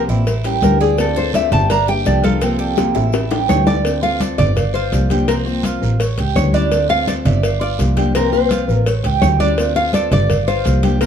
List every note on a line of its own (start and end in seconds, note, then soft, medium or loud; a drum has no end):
0.08 0.59 A1 loud
0.08 0.27 A#3 soft
0.08 0.27 C4 soft
0.08 0.44 E4 medium
0.08 0.26 F4 soft
0.08 high conga soft
0.08 short guiro medium
0.08 maracas soft
0.26 muted steel-string acoustic guitar stroke medium
0.26 cowbell loud
0.26 high conga soft
0.26 long guiro medium
0.26 maracas medium
0.44 0.62 G3 soft
0.44 0.62 C#4 soft
0.44 0.62 E4 medium
0.44 0.80 G4 medium
0.44 cowbell medium
0.44 high conga soft
0.44 maracas soft
0.62 1.46 D2 medium
0.62 0.97 E3 medium
0.62 0.98 G3 medium
0.62 0.98 C#4 medium
0.62 0.99 E4 medium
0.62 0.80 A#4 medium
0.62 cowbell medium
0.62 high conga medium
0.62 short guiro medium
0.62 maracas medium
0.81 0.98 G#4 medium
0.81 1.15 D5 medium
0.81 short guiro medium
0.81 maracas soft
0.97 1.33 D3 medium
0.97 1.33 A3 medium
0.97 1.34 C4 medium
0.97 1.34 F4 medium
0.97 1.17 A4 medium
0.97 cowbell loud
0.97 high conga soft
0.97 long guiro medium
0.97 maracas medium
1.16 1.34 A4 medium
1.16 1.34 C5 medium
1.16 high conga soft
1.16 maracas soft
1.34 1.51 D3 medium
1.34 1.52 A3 medium
1.34 1.52 C4 medium
1.34 1.50 F4 medium
1.34 1.52 D5 medium
1.34 1.52 E5 medium
1.34 cowbell medium
1.34 high conga loud
1.34 short guiro medium
1.34 maracas medium
1.51 2.02 G1 medium
1.51 1.70 A3 soft
1.51 1.70 C4 soft
1.51 1.69 F4 soft
1.51 1.70 G4 medium
1.51 1.70 A5 loud
1.51 cowbell medium
1.51 high conga soft
1.51 low conga medium
1.51 short guiro medium
1.51 maracas soft
1.70 1.88 D4 medium
1.70 1.88 A#5 loud
1.70 muted steel-string acoustic guitar stroke medium
1.70 cowbell loud
1.70 high conga soft
1.70 long guiro medium
1.70 maracas medium
1.88 2.05 A#3 soft
1.88 2.06 D4 soft
1.88 2.05 G4 medium
1.88 2.23 G4 medium
1.88 2.06 G5 loud
1.88 high conga soft
1.88 maracas soft
2.05 2.90 C2 medium
2.05 2.41 D3 medium
2.05 2.41 F3 medium
2.05 2.41 A#3 medium
2.05 2.42 D4 medium
2.05 2.42 G4 medium
2.05 2.24 D5 medium
2.05 cowbell medium
2.05 high conga soft
2.05 short guiro medium
2.05 maracas medium
2.23 2.42 F4 medium
2.23 3.10 A4 medium
2.23 cowbell medium
2.23 high conga medium
2.23 short guiro medium
2.23 maracas soft
2.41 2.76 C3 medium
2.41 2.76 F3 medium
2.41 2.77 A#3 medium
2.41 2.58 C4 medium
2.41 2.78 C4 medium
2.41 2.78 F4 medium
2.41 cowbell loud
2.41 high conga soft
2.41 long guiro medium
2.41 maracas medium
2.59 2.94 G4 medium
2.59 high conga soft
2.59 maracas soft
2.77 2.95 C3 medium
2.77 2.95 F3 medium
2.77 2.95 A#3 medium
2.77 2.95 C4 medium
2.77 2.94 F4 medium
2.77 cowbell medium
2.77 high bongo loud
2.77 high conga loud
2.77 short guiro medium
2.77 maracas medium
2.95 3.46 A1 medium
2.95 3.13 A#3 soft
2.95 3.13 C4 soft
2.95 3.30 E4 medium
2.95 3.13 F4 soft
2.95 high bongo loud
2.95 high conga soft
2.95 short guiro medium
2.95 maracas soft
3.13 cowbell loud
3.13 high bongo loud
3.13 high conga soft
3.13 long guiro medium
3.13 maracas medium
3.31 3.48 G3 soft
3.31 3.49 C#4 soft
3.31 3.48 E4 soft
3.31 3.66 G4 medium
3.31 cowbell medium
3.31 low bongo loud
3.31 high conga soft
3.31 maracas soft
3.49 4.33 D2 medium
3.49 3.83 E3 medium
3.49 3.84 G3 medium
3.49 3.85 C#4 medium
3.49 3.85 E4 medium
3.49 3.66 C#5 loud
3.49 cowbell medium
3.49 low bongo medium
3.49 high conga medium
3.49 short guiro medium
3.49 maracas medium
3.67 4.02 D5 medium
3.67 3.85 D5 medium
3.67 low bongo loud
3.67 high conga medium
3.67 short guiro medium
3.67 maracas soft
3.83 4.02 D3 medium
3.83 4.02 A3 medium
3.83 4.02 C4 medium
3.83 4.01 F4 medium
3.83 cowbell loud
3.83 high conga soft
3.83 long guiro medium
3.83 maracas medium
4.02 4.56 A3 medium
4.02 4.56 C4 medium
4.02 4.56 F4 medium
4.02 4.21 F4 medium
4.02 4.20 F5 loud
4.02 high conga soft
4.02 maracas soft
4.20 4.38 A4 medium
4.20 4.37 D5 loud
4.20 cowbell medium
4.20 high conga loud
4.20 short guiro medium
4.20 maracas medium
4.38 4.89 G1 loud
4.38 4.76 D5 loud
4.38 4.74 D5 medium
4.38 cowbell medium
4.38 high conga soft
4.38 low conga medium
4.38 short guiro medium
4.38 maracas soft
4.56 muted steel-string acoustic guitar stroke medium
4.56 cowbell loud
4.56 high conga soft
4.56 low conga medium
4.56 long guiro medium
4.56 maracas medium
4.74 5.10 F4 medium
4.74 5.24 C5 loud
4.74 high conga soft
4.74 maracas soft
4.92 5.77 C2 medium
4.92 5.09 F3 medium
4.92 5.10 A#3 medium
4.92 5.10 D4 medium
4.92 5.09 G4 medium
4.92 cowbell medium
4.92 high conga soft
4.92 short guiro medium
4.92 maracas medium
5.10 5.27 F3 medium
5.10 5.28 A#3 medium
5.10 5.28 D4 medium
5.10 5.28 G4 medium
5.10 cowbell medium
5.10 high conga medium
5.10 short guiro medium
5.10 maracas soft
5.28 5.46 C3 medium
5.28 5.46 F3 medium
5.28 5.46 A#3 medium
5.28 5.63 C4 medium
5.28 5.45 C4 medium
5.28 5.45 F4 medium
5.28 5.33 A#4 loud
5.28 cowbell loud
5.28 high conga soft
5.28 long guiro medium
5.28 maracas medium
5.45 5.99 F3 medium
5.45 6.00 A#3 medium
5.45 6.00 C4 medium
5.45 5.99 F4 medium
5.45 6.00 C5 medium
5.45 high conga soft
5.45 maracas soft
5.63 5.99 F4 medium
5.63 cowbell medium
5.63 high conga medium
5.63 short guiro medium
5.63 maracas medium
5.82 6.16 A1 medium
5.82 high conga soft
5.82 short guiro medium
5.82 maracas soft
6.00 6.18 C#5 medium
6.00 muted steel-string acoustic guitar stroke medium
6.00 cowbell loud
6.00 high conga soft
6.00 long guiro medium
6.00 maracas medium
6.17 6.35 C#2 medium
6.17 6.53 G4 medium
6.17 cowbell medium
6.17 high conga soft
6.17 maracas soft
6.36 7.20 D2 loud
6.36 6.53 E3 soft
6.36 6.54 G3 medium
6.36 6.54 C#4 medium
6.36 6.53 E4 medium
6.36 6.54 C#5 medium
6.36 cowbell medium
6.36 high conga medium
6.36 short guiro medium
6.36 maracas medium
6.53 6.72 G3 medium
6.53 6.72 C#4 medium
6.53 6.89 D4 medium
6.53 6.71 E4 medium
6.53 6.89 D5 medium
6.53 high conga medium
6.53 short guiro medium
6.53 maracas soft
6.71 6.89 D3 medium
6.71 6.90 A3 medium
6.71 6.89 C4 medium
6.71 6.88 F4 medium
6.71 cowbell loud
6.71 high conga soft
6.71 long guiro medium
6.71 maracas medium
6.89 7.43 A3 medium
6.89 7.43 C4 medium
6.89 7.42 F4 medium
6.89 7.07 F4 medium
6.89 7.07 F5 loud
6.89 high conga soft
6.89 maracas soft
7.07 7.25 A4 medium
7.07 7.13 D5 loud
7.07 cowbell medium
7.07 high conga loud
7.07 short guiro medium
7.07 maracas medium
7.25 7.75 G1 loud
7.25 7.60 D5 medium
7.25 7.61 E5 loud
7.25 cowbell medium
7.25 high conga soft
7.25 low conga medium
7.25 short guiro medium
7.25 maracas soft
7.43 muted steel-string acoustic guitar stroke medium
7.43 cowbell loud
7.43 long guiro medium
7.43 maracas medium
7.61 7.96 F4 medium
7.61 8.17 D5 loud
7.61 high conga soft
7.61 maracas soft
7.78 8.63 C2 medium
7.78 7.96 F3 medium
7.78 7.97 A#3 medium
7.78 7.96 D4 medium
7.78 7.95 G4 medium
7.78 cowbell medium
7.78 high conga soft
7.78 short guiro medium
7.78 maracas medium
7.97 8.14 F3 medium
7.97 8.15 A#3 medium
7.97 8.15 D4 medium
7.97 8.14 G4 medium
7.97 cowbell medium
7.97 high conga medium
7.97 short guiro medium
7.97 maracas soft
8.15 8.32 C3 medium
8.15 8.32 F3 medium
8.15 8.32 A#3 medium
8.15 8.50 C4 medium
8.15 8.31 C4 medium
8.15 8.31 F4 medium
8.15 8.32 A#4 loud
8.15 cowbell loud
8.15 high conga soft
8.15 long guiro medium
8.15 maracas medium
8.32 8.86 F3 medium
8.32 8.86 A#3 medium
8.32 8.86 C4 medium
8.32 8.85 F4 medium
8.32 8.83 C5 medium
8.32 high conga soft
8.32 maracas soft
8.51 8.86 F4 medium
8.51 cowbell medium
8.51 high conga loud
8.51 short guiro medium
8.51 maracas medium
8.68 9.02 A1 loud
8.68 high conga soft
8.68 short guiro medium
8.68 maracas soft
8.86 9.04 C#5 medium
8.86 muted steel-string acoustic guitar stroke medium
8.86 cowbell loud
8.86 high conga soft
8.86 long guiro medium
8.86 maracas medium
9.04 9.21 C#2 medium
9.04 9.39 G4 medium
9.04 cowbell medium
9.04 high conga soft
9.04 maracas soft
9.22 10.06 D2 loud
9.22 9.39 E3 medium
9.22 9.40 G3 medium
9.22 9.40 C#4 soft
9.22 9.39 E4 medium
9.22 9.27 C#5 loud
9.22 cowbell medium
9.22 high conga medium
9.22 short guiro medium
9.22 maracas medium
9.40 9.58 G3 medium
9.40 9.58 C#4 medium
9.40 9.75 D4 medium
9.40 9.57 E4 medium
9.40 9.73 D5 loud
9.40 high conga medium
9.40 short guiro medium
9.40 maracas soft
9.58 9.75 D3 medium
9.58 9.76 A3 medium
9.58 9.76 C4 medium
9.58 9.75 F4 medium
9.58 cowbell loud
9.58 long guiro medium
9.58 maracas medium
9.76 10.30 A3 medium
9.76 10.30 C4 medium
9.76 10.29 F4 medium
9.76 9.93 F4 medium
9.76 9.93 F5 loud
9.76 high conga soft
9.76 maracas soft
9.93 10.11 A4 medium
9.93 10.11 D5 loud
9.93 cowbell medium
9.93 high conga loud
9.93 short guiro medium
9.93 maracas medium
10.11 10.62 G1 loud
10.11 10.47 D5 medium
10.11 10.49 D5 loud
10.11 cowbell medium
10.11 high conga soft
10.11 low conga medium
10.11 short guiro medium
10.11 maracas soft
10.30 muted steel-string acoustic guitar stroke medium
10.30 cowbell loud
10.30 high conga soft
10.30 low conga medium
10.30 long guiro medium
10.30 maracas medium
10.47 10.82 F4 medium
10.47 10.97 C5 loud
10.47 high conga soft
10.47 maracas soft
10.65 11.06 C2 loud
10.65 10.82 F3 soft
10.65 10.83 A#3 soft
10.65 10.82 D4 medium
10.65 10.82 G4 medium
10.65 cowbell medium
10.65 high conga soft
10.65 short guiro medium
10.65 maracas medium
10.83 11.00 F3 medium
10.83 11.01 A#3 medium
10.83 11.01 D4 medium
10.83 11.00 G4 medium
10.83 11.01 G4 medium
10.83 cowbell medium
10.83 high conga medium
10.83 short guiro medium
10.83 maracas soft
11.01 11.06 C3 medium
11.01 11.06 F3 medium
11.01 11.06 A#3 medium
11.01 11.06 C4 medium
11.01 11.06 F4 medium
11.01 11.06 A#4 loud
11.01 cowbell loud
11.01 long guiro medium
11.01 maracas medium